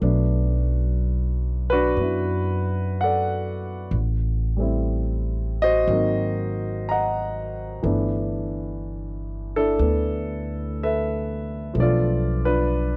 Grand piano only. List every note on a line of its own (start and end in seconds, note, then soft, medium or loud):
0.01 3.92 F#3 soft
0.01 3.92 A3 soft
0.01 1.96 B3 soft
0.01 1.71 D4 medium
1.70 1.97 D4 medium
1.70 3.60 F#4 medium
1.70 2.61 B4 medium
1.98 3.93 B3 soft
1.98 3.93 D4 soft
1.98 3.94 E4 soft
3.01 3.93 A4 medium
3.01 3.93 D5 medium
3.01 3.91 F#5 medium
4.57 5.87 G3 soft
4.57 5.88 A3 soft
4.57 5.88 C4 soft
4.61 5.89 E4 soft
5.62 7.51 F#4 medium
5.62 7.51 C5 medium
5.62 6.53 D#5 loud
5.89 7.84 F#3 soft
5.89 7.84 A#3 soft
5.89 7.84 C4 soft
5.89 7.85 D#4 medium
6.89 7.82 D#5 medium
6.89 7.82 F#5 medium
6.89 7.81 A#5 medium
7.83 11.75 E3 soft
7.83 9.77 A3 soft
7.83 9.80 B3 soft
7.83 9.55 D4 soft
9.56 11.44 D4 medium
9.56 11.44 E4 medium
9.56 10.82 A4 medium
9.78 11.73 A3 soft
9.78 11.75 B3 soft
10.83 11.74 A4 medium
10.83 11.74 B4 medium
10.83 11.81 E5 medium
11.74 12.97 F3 soft
11.74 12.97 A3 soft
11.74 12.97 B3 soft
11.78 12.44 D4 soft
11.78 12.44 F4 medium
11.78 12.97 A4 medium
11.78 12.46 D5 medium
12.45 12.97 D4 medium
12.45 12.97 F4 soft
12.45 12.97 B4 medium